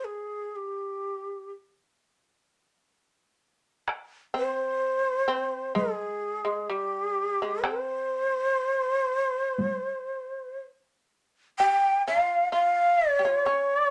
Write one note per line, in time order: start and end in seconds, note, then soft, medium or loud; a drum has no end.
0.05 0.57 G#4 medium
0.56 1.50 G4 medium
3.88 taiko rim soft
4.34 5.24 C4 medium
4.34 5.73 C5 medium
5.28 5.72 C4 medium
5.75 6.42 G#3 medium
5.75 6.72 G#4 medium
5.75 taiko high soft
6.45 6.67 G#3 medium
6.70 7.37 G3 medium
6.70 7.64 G4 medium
7.42 7.63 G#3 medium
7.63 10.56 C4 medium
7.63 10.60 C5 medium
7.63 taiko rim soft
9.59 taiko high medium
11.59 12.03 G4 medium
11.59 12.03 G5 loud
12.07 12.51 F4 medium
12.07 12.51 F5 medium
12.52 13.14 F4 medium
12.52 13.14 F5 loud
13.14 13.46 C#5 loud
13.19 13.24 G4 medium
13.25 13.46 F4 medium
13.46 13.90 C#4 medium
13.46 13.90 C#5 medium